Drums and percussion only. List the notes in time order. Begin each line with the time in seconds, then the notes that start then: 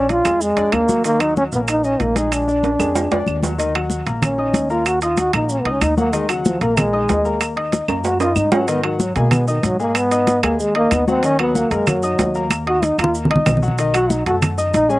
0.09 high conga, high timbale, maracas
0.25 high conga, high timbale, claves, maracas
0.41 high conga, maracas
0.57 high conga, high timbale, maracas
0.72 high conga, high timbale, claves, maracas
0.89 high conga, maracas
1.04 high conga, high timbale, maracas
1.20 high conga, high timbale, claves, maracas
1.36 high conga, maracas
1.52 high conga, maracas
1.68 high conga, high timbale, claves, maracas
1.84 high conga, maracas
2.00 high conga, high timbale, maracas
2.16 high conga, high timbale, maracas
2.32 high conga, high timbale, claves, maracas
2.47 high conga, maracas
2.63 high conga, high timbale, maracas
2.79 high conga, high timbale, claves, maracas
2.95 high conga, low timbale, maracas
3.11 high conga, low timbale, maracas
3.26 high conga, claves, maracas
3.43 high conga, low timbale, maracas
3.59 high conga, high timbale, maracas
3.75 high conga, high timbale, claves
3.90 high conga, maracas
4.06 high conga, high timbale, maracas
4.22 high conga, low conga, high timbale, claves, maracas
4.38 high conga
4.54 high conga, high timbale, maracas
4.70 high conga, maracas
4.86 high conga, high timbale, claves, maracas
5.01 high conga, high timbale, maracas
5.17 high conga, high timbale, maracas
5.33 high conga, high timbale, claves, maracas
5.49 high conga, maracas
5.65 high conga, high timbale
5.81 high conga, high timbale, claves, maracas
5.98 high conga, maracas
6.13 high conga, high timbale, maracas
6.29 high conga, high timbale, claves, maracas
6.45 high conga, maracas
6.61 high conga, high timbale, maracas
6.77 high conga, low conga, high timbale, claves, maracas
6.94 high conga
7.09 high conga, high timbale, low timbale, maracas
7.25 high conga, maracas
7.41 high conga, high timbale, claves, maracas
7.57 high conga, high timbale
7.72 high conga, high timbale, maracas
7.88 high conga, high timbale, claves, maracas
8.04 high conga, low timbale, maracas
8.20 high conga, high timbale, maracas
8.36 high conga, claves, maracas
8.52 high conga, low timbale, maracas
8.68 high conga, high timbale, maracas
8.84 high conga, high timbale, claves
9.00 high conga, maracas
9.16 high conga, high timbale, maracas
9.31 high conga, low conga, high timbale, claves, maracas
9.48 high conga, maracas
9.63 high conga, high timbale, maracas
9.79 high conga, maracas
9.95 high conga, high timbale, claves, maracas
10.11 high conga, high timbale, maracas
10.27 high conga, high timbale, maracas
10.43 high conga, high timbale, claves, maracas
10.60 high conga, maracas
10.75 high conga, high timbale
10.91 high conga, high timbale, claves, maracas
11.08 high conga, maracas
11.23 high conga, high timbale, maracas
11.39 high conga, high timbale, claves
11.55 high conga, maracas
11.71 high conga, high timbale, maracas
11.87 high conga, low conga, high timbale, claves, maracas
12.03 high conga, maracas
12.19 high conga, high timbale, low timbale, maracas
12.35 high conga, maracas
12.50 high conga, high timbale, claves, maracas
12.67 high timbale
12.83 high conga, high timbale, maracas
12.99 high timbale, claves, maracas
13.04 low conga
13.15 maracas
13.25 low conga
13.31 high timbale
13.36 low conga
13.46 low conga, high timbale, low timbale, claves, maracas
13.57 low conga
13.63 maracas
13.68 low conga
13.78 high conga, high timbale, maracas
13.94 high conga, high timbale, claves, maracas
14.10 high conga, maracas
14.26 high conga, high timbale, maracas
14.42 high conga, low conga, high timbale, claves, maracas
14.58 high conga, maracas
14.74 high conga, high timbale, maracas
14.90 high conga, maracas